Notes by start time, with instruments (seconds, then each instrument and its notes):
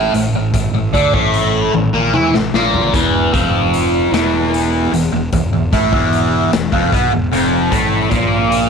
Already playing: distorted electric guitar A2 A3
0.14 fingered electric bass A1, distorted electric guitar A2, closed hi-hat
0.32 fingered electric bass A1, distorted electric guitar A2
0.54 fingered electric bass A1, distorted electric guitar A2, kick, closed hi-hat
0.73 fingered electric bass A1, distorted electric guitar A2
0.94 fingered electric bass D2, distorted electric guitar D3 D4, kick, closed hi-hat
1.14 fingered electric bass A1, distorted electric guitar A2 A3, kick
1.34 closed hi-hat
1.73 fingered electric bass A1, distorted electric guitar A2, high tom
1.93 fingered electric bass A#1, distorted electric guitar A#2 A#3
2.13 fingered electric bass E2, distorted electric guitar E3 E4, mid tom
2.33 fingered electric bass A1, distorted electric guitar A2, snare
2.54 fingered electric bass A#1, distorted electric guitar A#2 A#3, snare
2.74 floor tom
2.94 fingered electric bass E1, distorted electric guitar E2 E3, kick, closed hi-hat
3.33 fingered electric bass F1, distorted electric guitar F2 F3, kick, closed hi-hat
3.74 closed hi-hat
4.12 fingered electric bass E1, distorted electric guitar E2 E3, snare, closed hi-hat
4.54 closed hi-hat
4.92 fingered electric bass E1, distorted electric guitar E2, closed hi-hat
5.12 fingered electric bass E1, distorted electric guitar E2
5.33 fingered electric bass E1, distorted electric guitar E2, kick, closed hi-hat
5.53 fingered electric bass E1, distorted electric guitar E2
5.72 fingered electric bass A1, distorted electric guitar A2 A3, kick, closed hi-hat
5.92 fingered electric bass E1, distorted electric guitar E2 E3, kick
6.13 closed hi-hat
6.52 fingered electric bass E1, distorted electric guitar E2, snare, closed hi-hat
6.72 fingered electric bass F1, distorted electric guitar F2 F3, kick
6.92 fingered electric bass B1, distorted electric guitar B2 B3, kick, closed hi-hat
7.12 fingered electric bass E1, distorted electric guitar E2
7.32 fingered electric bass F1, distorted electric guitar F2 F3, closed hi-hat
7.71 fingered electric bass A1, distorted electric guitar A2 A3, kick, closed hi-hat
8.10 fingered electric bass A#1, distorted electric guitar A#2 A#3, kick, closed hi-hat
8.52 closed hi-hat